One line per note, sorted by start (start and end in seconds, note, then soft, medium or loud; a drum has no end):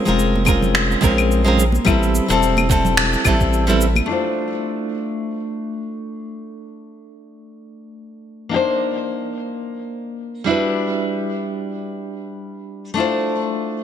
0.05 0.96 F1 medium
0.05 0.44 G#3 medium
0.05 0.44 C4 medium
0.05 0.44 C#4 medium
0.05 0.45 F4 medium
0.05 0.45 A#4 medium
0.05 shaker soft
0.19 shaker soft
0.36 high conga medium
0.45 0.99 G#3 medium
0.45 0.99 C4 medium
0.45 1.00 C#4 medium
0.45 1.00 F4 medium
0.45 1.01 A#4 medium
0.45 kick loud
0.45 claves medium
0.45 shaker medium
0.62 low conga medium
0.62 shaker soft
0.75 finger snap medium
0.75 shaker soft
0.91 shaker soft
1.01 1.79 A#1 loud
1.01 1.42 G#3 medium
1.01 1.42 C4 medium
1.01 1.42 C#4 medium
1.01 1.43 F4 medium
1.01 1.43 A#4 loud
1.01 kick loud
1.01 high conga medium
1.01 shaker medium
1.18 claves medium
1.18 shaker soft
1.32 shaker soft
1.44 1.62 G#3 loud
1.44 1.62 C4 medium
1.44 1.63 C#4 medium
1.44 1.63 F4 medium
1.44 1.64 A#4 loud
1.58 low conga medium
1.58 shaker medium
1.72 high conga medium
1.72 shaker soft
1.85 2.20 A1 loud
1.85 2.25 G3 medium
1.85 2.25 B3 medium
1.85 2.26 C4 medium
1.85 2.26 E4 medium
1.85 2.27 A4 loud
1.85 kick loud
1.85 claves medium
1.85 shaker soft
2.03 shaker soft
2.15 shaker medium
2.28 2.97 E1 medium
2.28 2.66 G3 medium
2.28 2.31 B3 medium
2.28 2.67 C4 medium
2.28 2.67 E4 medium
2.28 2.68 A4 medium
2.28 shaker soft
2.43 shaker soft
2.57 high conga loud
2.57 claves medium
2.57 shaker soft
2.69 3.22 G3 medium
2.69 2.72 B3 medium
2.69 3.23 C4 medium
2.69 3.23 E4 medium
2.69 3.24 A4 medium
2.69 kick loud
2.69 shaker medium
2.85 low conga medium
2.85 shaker soft
2.97 3.16 E1 medium
2.97 finger snap medium
2.97 shaker soft
3.13 shaker soft
3.24 4.01 A1 medium
3.24 3.65 G3 medium
3.24 3.27 B3 medium
3.24 3.65 C4 medium
3.24 3.66 E4 medium
3.24 3.66 A4 loud
3.24 kick loud
3.24 high conga medium
3.24 claves medium
3.24 shaker medium
3.41 kick medium
3.41 shaker soft
3.53 shaker soft
3.67 3.84 G3 loud
3.67 3.84 B3 medium
3.67 3.85 C4 medium
3.67 3.85 E4 medium
3.67 3.86 A4 loud
3.67 shaker soft
3.81 shaker medium
3.96 high conga medium
3.96 claves medium
3.96 shaker soft
4.06 8.49 A3 medium
4.06 8.49 D4 medium
4.06 8.51 E4 medium
4.11 8.51 F4 medium
4.11 8.52 C5 medium
8.49 10.43 A#3 medium
8.49 10.44 D4 medium
8.49 10.44 D#4 medium
8.56 10.46 C5 medium
10.44 12.93 G3 medium
10.44 12.94 D4 medium
10.44 12.95 E4 medium
10.49 12.95 F#4 medium
10.49 12.96 B4 medium
12.94 13.84 A3 medium
12.94 13.84 D4 medium
12.94 13.84 E4 medium
12.98 13.84 F4 medium
12.98 13.84 C5 medium